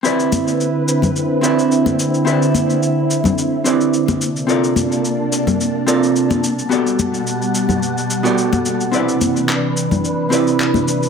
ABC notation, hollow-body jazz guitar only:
X:1
M:4/4
L:1/16
Q:"Swing 16ths" 1/4=108
K:Clyd
V:1 name="Hollow-body jazz guitar"
[CEGBd]8- [CEGBd]2 [CEGBd]6 | [CEGBd]8- [CEGBd]2 [CEGBd]4 z2 | [C=FA_Bd]8- [CFABd]2 [CFABd]4 z2 | [B,FGAd]8- [B,FGAd]2 z [B,FGAd]4- [B,FGAd] |
[CEGBd]8- [CEGBd]2 [CEGBd]6 |]